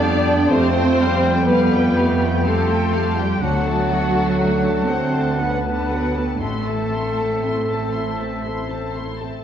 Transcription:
Already playing: F2 F3 G3 B3 D4 F4 G4 A4 D5 G5 A5
0.04 G3 G4 A4 F5
0.28 A3 F4 G4 G5
0.49 F2 F3 A3 C4 C5
0.53 G3 G4 F5
0.76 A3 F4 G5
1.00 G3 G4 F5
1.24 A3 F4 G4 G5
1.46 G3 B3 G4 A4 B4 B5
1.50 G3 G4 F5
1.72 A3 F4 G4 G5
1.96 G3 A3 G4 F5 G5
2.20 A3 F4 G5 A5
2.44 G3 A3 C4 G4 A4 F5 C6
2.69 A3 F4 G4 G5
2.92 G3 G4 A4 F5
3.17 G3 A3 F4 G4 G5
3.40 D2 D3 F#3 B3 F#4 F#5 A5
3.66 A3 A4 A5
3.89 F#3 D4 F#4 F#5 A5
4.15 A3 A4 A5
4.39 F#3 A3 D4 F#4 A4 F#5 A5
4.65 A3 A4 D5 A5
4.89 F#3 A3 C4 F#4 C5 F#5 A5
5.13 A3 A4 D5 A5
5.38 F#3 A3 B3 D4 F#4 A4 B4 F#5 A5
5.63 A3 A4 D5 A5
5.89 F#3 F#4 A4 F#5 G5
6.15 A3 D4 A4 A5
6.39 A1 A2 A3 C4 E4 A4 E5 A5 C6
6.66 E3 C4 A4 A5
6.93 A3 E4 C6
7.17 C4 A4 A5
7.43 A3 C4 E4 A4 C6
7.69 C4 A4 A5
7.93 A3 E4 C5 C6
8.18 C4 A4 A5
8.44 A3 C4 E4 A4 C5 C6
8.69 C4 A4 A5
8.93 A3 C4 E4 C6
9.18 A3 C4 A4 A5

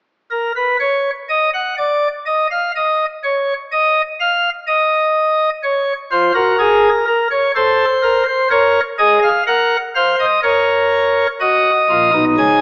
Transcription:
0.31 A#4
0.56 B4
0.80 C#5
1.29 D#5
1.54 F#5
1.78 D5
2.26 D#5
2.51 F5
2.76 D#5
3.24 C#5
3.72 D#5
4.20 F5
4.67 D#5
5.63 C#5
6.11 F4 C5
6.35 F#4 A#4
6.59 G#4
7.07 A#4
7.31 C#5
7.55 A4 C5
8.03 A#4
8.28 C5
8.51 A#4 C#5
8.99 G#4 D#5
9.23 F5
9.47 A#4 F#5
9.95 C5 F5
10.20 D#5
10.43 A#4 C#5
11.40 F#4 D#5
11.90 A#1 A#2 F4
12.14 B1 B2 D#4
12.38 C#2 C#3 G#5

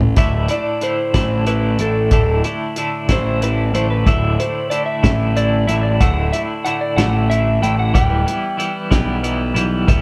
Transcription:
Already playing: A1 A2 E3 A3 C#4 E4 A4
0.01 floor tom, low conga
0.17 D1 A2 D3 A3 E4 E5, kick, closed hi-hat
0.48 A2 D3 A3 E4 D5, closed hi-hat
0.81 A2 D3 A3 E4 C5, closed hi-hat
1.14 A1 A2 D3 A3 E4, kick, snare, closed hi-hat
1.46 A2 D3 A3 E4 B4, closed hi-hat
1.79 A1 A2 D3 A3 E4 A4, closed hi-hat
2.11 D1 A2 D3 A3 E4, kick, closed hi-hat
2.44 A2 D3 A3 E4, closed hi-hat
2.76 A2 D3 A3 E4, closed hi-hat
3.09 A1 A2 D3 A3 E4 C5, kick, snare, closed hi-hat
3.42 A2 D3 A3 E4 B4, closed hi-hat
3.73 A1 A2 D3 A3 E4 C5, closed hi-hat
3.90 B4
4.06 D1 A2 D3 A3 E4 E5, kick, closed hi-hat
4.39 A2 D3 A3 E4 C5, closed hi-hat
4.70 A2 D3 A3 E4 D5, closed hi-hat
4.86 E5
5.03 A1 A2 D3 A3 E4, kick, snare, closed hi-hat
5.35 A2 D3 A3 E4 D5, closed hi-hat
5.67 A1 A2 D3 A3 E4 E5, closed hi-hat
5.83 D5
6.00 D1 A2 D3 A3 E4 F#5, kick, closed hi-hat
6.32 A2 D3 A3 E4 E5, closed hi-hat
6.65 A2 D3 A3 E4 F#5, closed hi-hat
6.81 D5
6.96 A1 A2 D3 A3 E4 F#5, snare, closed hi-hat
7.29 A2 D3 A3 E4 E5, closed hi-hat
7.62 A1 A2 D3 A3 E4 G5, closed hi-hat
7.79 F#5
7.94 D1 E3 G3 B3 E4 G5, kick, closed hi-hat
8.26 E3 G3 B3 E4, closed hi-hat
8.57 E3 G3 B3 E4, closed hi-hat
8.91 B1 E3 G3 B3 E4, kick, snare, closed hi-hat
9.23 E3 G3 B3 E4, closed hi-hat
9.54 B1 E3 G3 B3 E4, closed hi-hat
9.88 D1 E3 G3 B3 E4, kick, closed hi-hat

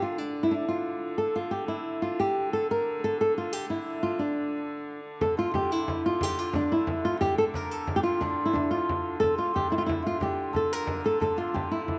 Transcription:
Already playing: D3
0.02 F4
0.18 D4
0.43 E4
0.51 D4
0.68 F4
1.18 D3 A4
1.36 F4
1.51 G4
1.68 E4
2.02 F4
2.20 G4
2.53 A4
2.71 A#4
3.04 A4
3.21 A4
3.38 F4
3.53 G4
3.70 E4
4.03 F4
4.19 D4
5.21 D3 A4, frame drum
5.37 F4
5.54 G4, frame drum
5.71 E4
5.88 E4, frame drum
6.06 F4
6.21 G4, frame drum
6.38 F4, frame drum
6.53 D4, frame drum
6.72 E4
6.87 frame drum
7.05 F4
7.21 G4, frame drum
7.38 A4
7.54 A#4, frame drum
7.71 A4
7.87 frame drum
7.96 G4
8.03 F4
8.21 D4, frame drum
8.46 E4
8.53 D4, frame drum
8.71 F4
8.89 frame drum
9.20 D3 A4, frame drum
9.38 F4
9.54 G4, frame drum
9.70 E4
9.78 F4
9.86 E4, frame drum
10.02 F4
10.07 F4
10.20 G4, frame drum
10.39 frame drum
10.53 A4, frame drum
10.73 A#4
10.87 A#4, frame drum
11.04 A4
11.20 A4, frame drum
11.37 F4, frame drum
11.54 G4, frame drum
11.71 E4
11.88 frame drum

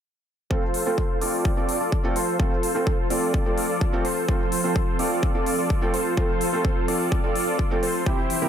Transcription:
0.50 F3 A3 C4 F4 A4 C5, kick
0.74 open hi-hat
0.85 A3 C4 F4 A4 C5
0.98 kick
1.21 A3 C4 F4 A4 D5, open hi-hat
1.45 kick
1.56 A3 C4 F4 A4 D5
1.69 open hi-hat
1.80 F4 A4 D5
1.92 kick
2.03 A3 C4 F4 A4
2.16 F4 A4 C5, open hi-hat
2.39 A3 C4 F4 A4 C5, kick
2.63 open hi-hat
2.74 A3 C4 F4 A4 C5
2.87 kick
3.10 A3 C4 F4 A4 D5, open hi-hat
3.34 kick
3.45 A3 C4 F4 A4 D5
3.58 open hi-hat
3.69 F4 A4 D5
3.81 kick
3.93 A3 C4 F4 A4
4.05 F4 A4 C5, open hi-hat
4.28 A3 C4 F4 A4 C5, kick
4.52 open hi-hat
4.63 A3 C4 F4 A4 C5
4.76 kick
4.99 A3 C4 F4 A4 D5, open hi-hat
5.23 kick
5.34 A3 C4 F4 A4 D5
5.46 open hi-hat
5.58 F4 A4 D5
5.70 kick
5.81 A3 C4 F4 A4
5.94 F4 A4 C5, open hi-hat
6.17 A3 C4 F4 A4, kick
6.41 open hi-hat
6.52 A3 C4 F4 A4 C5
6.65 kick
6.88 A3 C4 F4 A4 D5, open hi-hat
7.12 kick
7.23 A3 C4 F4 A4 D5
7.36 open hi-hat
7.47 F4 A4 D5
7.59 kick
7.71 A3 C4 F4 A4
7.83 F4 A4 C5, open hi-hat
8.06 C3 E3 G3 C4 E4 G4 C5, kick
8.30 open hi-hat
8.42 C3 G3 C4 E4 G4 A#4

